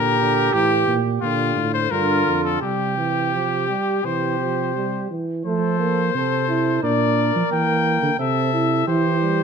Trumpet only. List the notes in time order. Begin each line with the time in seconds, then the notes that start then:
Already playing: A#4
0.53 G4
1.22 F4
1.74 C5
1.91 A#4
2.44 A4
2.62 G4
4.05 C5
5.45 C5
6.83 D5
7.52 G5
8.20 E5
8.88 C5